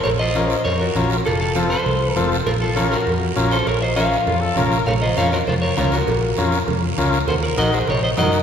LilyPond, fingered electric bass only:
\new Staff \with { instrumentName = "Fingered electric bass" } { \clef bass \time 4/4 \key bes \minor \tempo 4 = 200 bes,,2 f,4 bes,,4 | f,,2 c,4 f,,4 | bes,,2 f,4 bes,,4 | bes,,2 f,4 bes,,4 |
bes,,4 f,4 f,4 des,4 | bes,,4 f,4 f,4 des,4 | ees,4 bes,,4 bes,,4 ges,4 | }